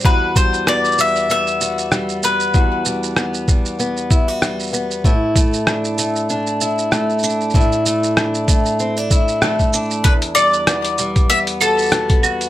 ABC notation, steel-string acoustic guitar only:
X:1
M:4/4
L:1/16
Q:"Swing 16ths" 1/4=96
K:Em
V:1 name="Steel-string acoustic guitar"
[E,,F]2 G,2 B,2 G,2 B,2 F2 G,2 B,2 | [E,,F]2 G,2 B,2 G,2 B,2 E F G,2 B,2 | [A,,E]2 A,2 D2 A,2 D2 E2 A,2 D2 | [A,,E]2 A,2 D2 A,2 C D E2 A,2 D2 |
E,,2 G,2 B,2 G,2 B,2 F2 B,2 F2 |]